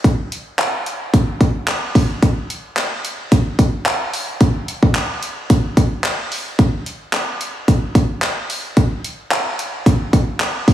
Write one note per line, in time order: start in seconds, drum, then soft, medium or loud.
0.04 kick loud
0.04 closed hi-hat loud
0.32 closed hi-hat medium
0.59 clap loud
0.59 closed hi-hat loud
0.86 closed hi-hat medium
1.14 kick loud
1.14 closed hi-hat loud
1.41 kick loud
1.41 closed hi-hat medium
1.68 clap loud
1.68 closed hi-hat loud
1.95 kick loud
1.95 open hi-hat medium
2.23 kick loud
2.23 closed hi-hat medium
2.50 closed hi-hat medium
2.77 clap loud
2.77 closed hi-hat loud
3.05 closed hi-hat medium
3.32 kick loud
3.32 closed hi-hat loud
3.59 kick loud
3.59 closed hi-hat medium
3.86 clap loud
3.86 closed hi-hat medium
4.14 open hi-hat medium
4.41 kick loud
4.41 closed hi-hat medium
4.68 closed hi-hat medium
4.83 kick medium
4.95 clap loud
4.95 closed hi-hat loud
5.23 closed hi-hat medium
5.50 kick loud
5.50 closed hi-hat loud
5.77 kick loud
5.77 closed hi-hat medium
6.04 clap loud
6.04 closed hi-hat medium
6.32 open hi-hat medium
6.59 kick loud
6.59 closed hi-hat medium
6.86 closed hi-hat medium
7.13 clap loud
7.13 closed hi-hat loud
7.41 closed hi-hat medium
7.68 kick loud
7.68 closed hi-hat loud
7.95 kick loud
7.95 closed hi-hat medium
8.22 clap loud
8.22 closed hi-hat loud
8.50 open hi-hat medium
8.77 kick loud
8.77 closed hi-hat medium
9.04 closed hi-hat medium
9.31 clap loud
9.31 closed hi-hat loud
9.59 closed hi-hat medium
9.86 kick loud
9.86 closed hi-hat loud
10.13 kick loud
10.13 closed hi-hat medium
10.40 clap loud
10.40 closed hi-hat loud
10.68 kick loud
10.68 open hi-hat medium